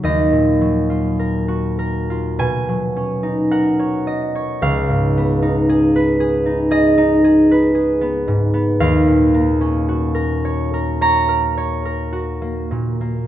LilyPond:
\new Staff \with { instrumentName = "Harp" } { \time 4/4 \key des \mixolydian \tempo 4 = 54 << { ees''2 aes''4 fis''4 | f''2 ees''2 | \key dis \minor eis''2 ais''2 | } \\ { <ees, fis dis' ais'>16 bes,16 ges16 f'16 bes'16 ges'16 bes'16 f'16 b,16 fis16 cis'16 dis'16 ais'16 cis''16 dis''16 cis''16 | des,16 aes,16 ces'16 ees'16 aes'16 ces''16 aes'16 ees'16 aes'16 ees'16 aes'16 ces''16 aes'16 ces'16 aes,16 ces'16 | dis,16 ais,16 ais16 cis'16 fis'16 ais'16 cis''16 ais'16 cis''16 ais'16 cis''16 ais'16 fis'16 ais16 ais,16 ais16 | } >> }